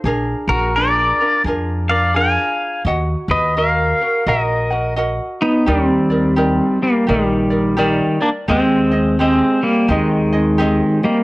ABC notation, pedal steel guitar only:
X:1
M:4/4
L:1/8
Q:"Swing" 1/4=85
K:Ebm
V:1 name="Pedal steel guitar"
z [GB] [B=d]2 z [df] [fa]2 | z [ce] [Bf]2 [Be]2 z [CE] | [K:Eb] [G,C]3 [G,B,] [E,G,]2 [E,G,] [B,D] | [A,C]2 [A,C] [G,B,] [E,A,]3 [G,B,] |]